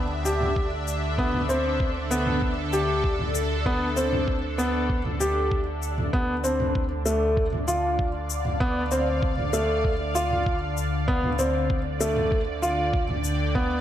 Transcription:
Already playing: detuned saw bass D2, analog synth pad D3 D4 G4 E5
0.25 felt piano G4, shaker
0.41 mid tom
0.56 kick
0.88 shaker
1.03 analog synth pad A4
1.18 felt piano B3, kick
1.34 mid tom
1.49 felt piano C4, shaker
1.80 kick
2.11 felt piano B3, shaker
2.27 mid tom
2.42 kick
2.73 felt piano G4, shaker
3.04 kick
3.19 mid tom
3.35 shaker
3.66 felt piano B3, kick
3.96 felt piano C4, shaker
4.12 mid tom
4.28 kick
4.58 felt piano B3, shaker
4.90 kick
5.05 mid tom
5.20 felt piano G4, shaker
5.51 kick
5.82 shaker
5.98 mid tom
6.13 detuned saw bass D2, analog synth pad D3, felt piano B3, kick
6.44 felt piano C4, shaker
6.60 mid tom
6.75 kick
6.82 analog synth pad D5
7.06 felt piano A3, shaker
7.37 kick
7.53 mid tom
7.67 felt piano F4, analog synth pad F5, shaker
7.99 kick
8.30 shaker
8.45 mid tom
8.60 felt piano B3, kick
8.91 felt piano C4, shaker
9.23 kick
9.38 mid tom
9.53 felt piano A3, shaker
9.85 kick
10.15 felt piano F4, shaker
10.31 mid tom
10.46 kick
10.77 shaker
11.08 felt piano B3, kick
11.23 mid tom
11.39 felt piano C4, shaker
11.70 analog synth pad D5, kick
12.01 felt piano A3, shaker
12.16 mid tom
12.32 kick
12.62 felt piano F4, shaker
12.87 analog synth pad G5
12.94 kick
13.09 mid tom
13.24 shaker
13.55 felt piano B3, kick

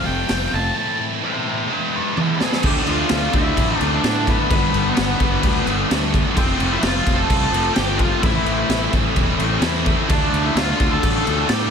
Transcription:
Already playing: distorted electric guitar F3 A3 C4 F4
0.04 fingered electric bass F1, distorted electric guitar A3 C4 F4, lead electric guitar G5
0.28 fingered electric bass F1, distorted electric guitar F3 A3 C4 F4, snare, open hi-hat
0.51 fingered electric bass F1, distorted electric guitar A3 C4 F4, lead electric guitar A5
0.75 distorted electric guitar A2 E3 A3 C4 E4, lead electric guitar A5
0.98 distorted electric guitar A3 C4 E4
1.22 distorted electric guitar A2 E3 A3 C4 E4, lead electric guitar E5 G5
1.46 distorted electric guitar A3 C4 E4, lead electric guitar E5 G5
1.68 distorted electric guitar E3 G#3 B3 E4, lead electric guitar B4
1.72 lead electric guitar G5
1.91 distorted electric guitar G#3 B3 E4
1.96 lead electric guitar B4 D5
2.17 distorted electric guitar E3 G#3 B3 E4, lead electric guitar E4 B4 D5, high tom
2.21 lead electric guitar E5
2.39 distorted electric guitar G#3 B3 E4, lead electric guitar G#4 G#5, snare
2.44 lead electric guitar A4
2.52 snare
2.62 fingered electric bass D2, distorted electric guitar D3 F3 A3 D4, lead electric guitar G4 G5, kick, crash
2.86 fingered electric bass D2, distorted electric guitar F3 A3 D4, lead electric guitar F4, crash
2.90 lead electric guitar F5
3.09 fingered electric bass D2, distorted electric guitar D3 F3 A3 D4, snare, crash
3.32 fingered electric bass D2, distorted electric guitar D3 F3 A3 D4, lead electric guitar E4 E5, kick, crash
3.56 fingered electric bass A1, distorted electric guitar D3 F3 A3 D4, kick, crash
3.77 fingered electric bass D2, distorted electric guitar A3 D4, lead electric guitar D5, crash
3.82 overdriven electric guitar D3, distorted electric guitar F3
3.94 lead electric guitar D4 D5
4.02 fingered electric bass A2, distorted electric guitar D3 F3 A3 D4, snare, crash
4.25 distorted electric guitar F3 A3 D4, kick, crash
4.30 lead electric guitar B3 B4
4.48 fingered electric bass G1, distorted electric guitar G2 D3 G3 B3 D4, kick, crash
4.71 fingered electric bass G1, distorted electric guitar G3 B3 D4, crash
4.95 fingered electric bass G1, distorted electric guitar D3 G3 B3 D4, snare, crash
5.19 fingered electric bass G1, distorted electric guitar G2 D3 G3 B3 D4, kick, crash
5.41 fingered electric bass D2, distorted electric guitar G2 D3 G3 B3, kick, crash
5.46 distorted electric guitar D4
5.65 fingered electric bass G1, overdriven electric guitar G2 D3, distorted electric guitar G3 B3 D4, crash
5.89 fingered electric bass D2, distorted electric guitar G2 D3 G3 B3 D4, snare, crash
6.12 distorted electric guitar G3 B3 D4, kick, crash
6.35 fingered electric bass F1, overdriven electric guitar F2 C3, distorted electric guitar F3 A3 C4 F4, lead electric guitar C4 C5, kick, crash
6.39 distorted electric guitar C4 F4
6.60 fingered electric bass F1, distorted electric guitar A3 C4 F4, crash
6.71 lead electric guitar E4 E5
6.82 fingered electric bass F1, distorted electric guitar F3 A3 C4 F4, lead electric guitar F4 F5, snare, crash
6.87 distorted electric guitar F4
7.06 fingered electric bass F1, distorted electric guitar F3 A3 C4 F4, kick, crash
7.16 lead electric guitar A4 A5
7.29 fingered electric bass C2, distorted electric guitar F3 A3 C4 F4, kick, crash
7.50 fingered electric bass F1, overdriven electric guitar F2 C3 F3, distorted electric guitar F4, crash
7.55 distorted electric guitar A3 C4
7.74 fingered electric bass G1, overdriven electric guitar F2 C3, distorted electric guitar F3 A3, lead electric guitar G4 G5, snare, crash
7.79 distorted electric guitar C4 F4
7.97 distorted electric guitar F4, lead electric guitar F4 F5, kick, crash
8.02 distorted electric guitar A3 C4
8.22 fingered electric bass A1, distorted electric guitar A2 E3 A3 C4, lead electric guitar E4 E5, kick, crash
8.26 distorted electric guitar E4
8.45 fingered electric bass A1, distorted electric guitar C4 E4, crash
8.50 distorted electric guitar A3
8.69 fingered electric bass A1, distorted electric guitar E3 A3 C4, snare, crash
8.73 distorted electric guitar E4
8.93 fingered electric bass A1, distorted electric guitar A2 E3 A3 C4 E4, kick, crash
9.16 fingered electric bass E1, distorted electric guitar A2 E3 A3 C4 E4, kick, crash
9.38 fingered electric bass A1, overdriven electric guitar A2 E3 A3, distorted electric guitar C4 E4, crash
9.42 distorted electric guitar A3
9.60 fingered electric bass E2, distorted electric guitar A2 E3 A3, snare, crash
9.65 distorted electric guitar C4 E4
9.86 distorted electric guitar A3 C4 E4, kick, crash
10.09 fingered electric bass D2, distorted electric guitar D3 A3 D4 F4, lead electric guitar D4 D5, kick, crash
10.33 fingered electric bass D2, distorted electric guitar D4 F4, crash
10.37 distorted electric guitar A3
10.45 lead electric guitar E4 E5
10.55 fingered electric bass D2, distorted electric guitar D3 A3 D4, lead electric guitar F4, snare, crash
10.59 distorted electric guitar F4, lead electric guitar F5
10.80 fingered electric bass D2, distorted electric guitar D3 A3 D4 F4, kick, crash
10.92 lead electric guitar A4 A5
11.02 fingered electric bass A1, distorted electric guitar D3 A3 D4 F4, kick, crash
11.25 fingered electric bass D2, overdriven electric guitar D3, distorted electric guitar A3 D4 F4, crash
11.49 fingered electric bass A2, distorted electric guitar D3 A3 D4 F4, lead electric guitar G4 G5, snare, crash

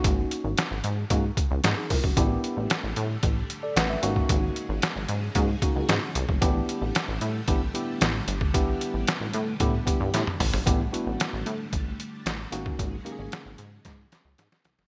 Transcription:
Already playing: tine electric piano A#3 C#4 D#4 F#4
0.04 analog synth bass G#1, kick, closed hi-hat
0.31 closed hi-hat
0.44 analog synth bass G#1
0.57 snare, closed hi-hat
0.71 analog synth bass G#1
0.84 analog synth bass G#2, closed hi-hat
1.10 analog synth bass G#2, tine electric piano A#3 C#4 D#4 F#4, kick, closed hi-hat
1.37 kick, closed hi-hat
1.51 analog synth bass C#2
1.64 analog synth bass G#2, snare, closed hi-hat
1.77 tine electric piano D#4 G#4
1.90 analog synth bass C2, tine electric piano F4 A#4, kick, open hi-hat
2.04 analog synth bass F#1, tine electric piano C#4 F#4, kick
2.17 analog synth bass A1, string machine D3 G3 A3, tine electric piano B3 D4 E4 G4, kick, closed hi-hat
2.44 closed hi-hat
2.57 analog synth bass A1
2.70 snare, closed hi-hat
2.84 analog synth bass A1
2.96 analog synth bass A2, closed hi-hat
3.23 analog synth bass A1, kick, closed hi-hat
3.50 closed hi-hat
3.63 tine electric piano A4 D5
3.76 analog synth bass A1, tine electric piano B4 F#5, snare, closed hi-hat
3.90 tine electric piano B4 E5
4.02 analog synth bass G#1, string machine C#3 F#3 G#3, tine electric piano A#3 C#4 D#4 F#4, closed hi-hat
4.16 kick
4.29 analog synth bass G#1, kick, closed hi-hat
4.56 closed hi-hat
4.69 analog synth bass G#1
4.82 snare, closed hi-hat
4.96 analog synth bass G#1
5.09 analog synth bass G#2, closed hi-hat
5.35 analog synth bass G#2, tine electric piano A#3 C#4 D#4 F#4, kick, closed hi-hat
5.62 tine electric piano A#3 C#4 D#4 F#4, kick, closed hi-hat
5.76 analog synth bass C#2
5.89 analog synth bass G#2, snare, closed hi-hat
6.15 analog synth bass C2, closed hi-hat
6.29 analog synth bass F#1, kick
6.41 analog synth bass A1, string machine D3 G3 A3, tine electric piano B3 D4 E4 G4, kick, closed hi-hat
6.69 closed hi-hat
6.82 analog synth bass A1
6.95 snare, closed hi-hat
7.08 analog synth bass A1
7.21 analog synth bass A2, closed hi-hat
7.48 analog synth bass A1, tine electric piano B3 D4 E4 G4, kick, closed hi-hat
7.74 tine electric piano B3 D4 E4 G4, closed hi-hat
8.01 analog synth bass A1, snare, closed hi-hat
8.28 analog synth bass G1, closed hi-hat
8.41 kick
8.54 analog synth bass A1, tine electric piano B3 D4 E4 G4, string machine B3, kick, closed hi-hat
8.81 closed hi-hat
8.94 analog synth bass A1
9.07 snare, closed hi-hat
9.21 analog synth bass A1
9.33 analog synth bass A2, closed hi-hat
9.60 analog synth bass A2, tine electric piano B3 D4 E4 G4, kick, closed hi-hat
9.86 tine electric piano B3 D4 E4 G4, kick, closed hi-hat
10.00 analog synth bass G2
10.14 analog synth bass A2, snare, closed hi-hat
10.27 high tom
10.40 analog synth bass A1, mid tom, open hi-hat
10.53 analog synth bass G1, floor tom
10.66 analog synth bass A1, string machine D3 G3 A3, tine electric piano B3 D4 E4 G4, kick, closed hi-hat
10.92 tine electric piano B3 D4 E4 F#4, closed hi-hat
11.06 analog synth bass A1
11.20 snare, closed hi-hat
11.33 analog synth bass A1
11.46 analog synth bass A2, closed hi-hat
11.73 analog synth bass A1, kick, closed hi-hat
12.00 closed hi-hat
12.26 analog synth bass A1, snare, closed hi-hat
12.52 analog synth bass G#1, string machine C#3 F#3 G#3, tine electric piano A#3 C#4 D#4 F#4, closed hi-hat
12.66 kick
12.79 analog synth bass G#1, kick, closed hi-hat
13.05 tine electric piano A#3 C#4 D#4 G4, closed hi-hat
13.12 tine electric piano G#4
13.19 analog synth bass G#1
13.32 snare, closed hi-hat
13.46 analog synth bass G#1
13.58 analog synth bass G#2, closed hi-hat
13.85 analog synth bass G#2, kick, snare, closed hi-hat
14.12 snare, closed hi-hat
14.25 analog synth bass C#2
14.38 analog synth bass G#2, snare, closed hi-hat
14.52 snare
14.65 analog synth bass C2, snare, closed hi-hat
14.78 analog synth bass F#1, snare

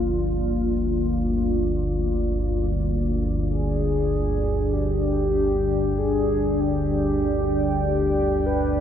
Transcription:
Already playing: synth drone G1 D2, ambient pad A#3 F4 D5, soft synth lead F4
3.47 ambient pad D4, soft synth lead G#4
4.73 soft synth lead G4
5.93 ambient pad G5
5.98 soft synth lead G#4
6.60 soft synth lead G4
7.86 soft synth lead G4
8.46 soft synth lead B4

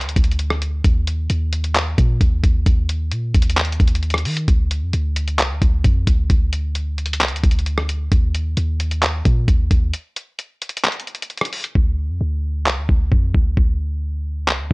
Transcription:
0.01 808-style bass D2, closed hi-hat
0.09 closed hi-hat
0.16 808-style bass D2, kick, closed hi-hat
0.24 closed hi-hat
0.31 closed hi-hat
0.39 closed hi-hat
0.50 cross-stick
0.62 closed hi-hat
0.84 808-style bass D#2, kick, closed hi-hat
1.07 closed hi-hat
1.30 808-style bass D#2, closed hi-hat
1.53 closed hi-hat
1.64 closed hi-hat
1.75 clap, closed hi-hat
1.98 808-style bass A#2, kick, closed hi-hat
2.21 808-style bass D#2, kick, closed hi-hat
2.44 808-style bass D#2, kick, closed hi-hat
2.66 808-style bass D#2, kick, closed hi-hat
2.89 closed hi-hat
3.12 808-style bass A#2, closed hi-hat
3.34 808-style bass D#2, kick, closed hi-hat
3.42 closed hi-hat
3.50 closed hi-hat
3.57 clap, closed hi-hat
3.65 closed hi-hat
3.72 closed hi-hat
3.80 808-style bass D#2, kick, closed hi-hat
3.87 closed hi-hat
3.95 closed hi-hat
4.03 closed hi-hat
4.10 cross-stick, closed hi-hat
4.18 closed hi-hat
4.25 808-style bass D#3, closed hi-hat, open hi-hat
4.37 closed hi-hat
4.48 808-style bass D2, kick, closed hi-hat
4.71 closed hi-hat
4.82 808-style bass F2
4.93 808-style bass D2, closed hi-hat
5.16 closed hi-hat
5.28 closed hi-hat
5.39 808-style bass C2, clap, closed hi-hat
5.50 808-style bass D2
5.62 808-style bass D2, kick, closed hi-hat
5.84 808-style bass F2, kick, closed hi-hat
6.07 808-style bass D2, kick, closed hi-hat
6.30 808-style bass D2, kick, closed hi-hat
6.53 closed hi-hat
6.75 closed hi-hat
6.98 closed hi-hat
7.06 closed hi-hat
7.13 closed hi-hat
7.21 808-style bass C2, clap, closed hi-hat
7.28 808-style bass D2, closed hi-hat
7.36 closed hi-hat
7.43 808-style bass D2, kick, closed hi-hat
7.51 closed hi-hat
7.59 closed hi-hat
7.66 closed hi-hat
7.78 cross-stick
7.89 closed hi-hat
8.12 808-style bass D#2, kick, closed hi-hat
8.35 closed hi-hat
8.57 808-style bass D#2, closed hi-hat
8.80 closed hi-hat
8.91 closed hi-hat
9.02 clap, closed hi-hat
9.25 808-style bass A#2, kick, closed hi-hat
9.48 808-style bass D#2, kick, closed hi-hat
9.71 808-style bass D#2, kick, closed hi-hat
9.94 closed hi-hat
10.16 closed hi-hat
10.39 closed hi-hat
10.62 closed hi-hat
10.69 closed hi-hat
10.77 closed hi-hat
10.84 clap, closed hi-hat
10.92 closed hi-hat
11.00 closed hi-hat
11.07 closed hi-hat
11.15 closed hi-hat
11.22 closed hi-hat
11.30 closed hi-hat
11.37 cross-stick, closed hi-hat
11.45 closed hi-hat
11.53 closed hi-hat, open hi-hat
11.64 closed hi-hat
11.75 808-style bass D2, kick
12.09 808-style bass F2
12.21 808-style bass D2
12.66 808-style bass C2, clap
12.78 808-style bass D2
12.89 808-style bass D2, kick
13.12 808-style bass F2, kick
13.34 808-style bass D2, kick
13.57 808-style bass D2, kick
14.48 808-style bass C2, clap
14.59 808-style bass D2

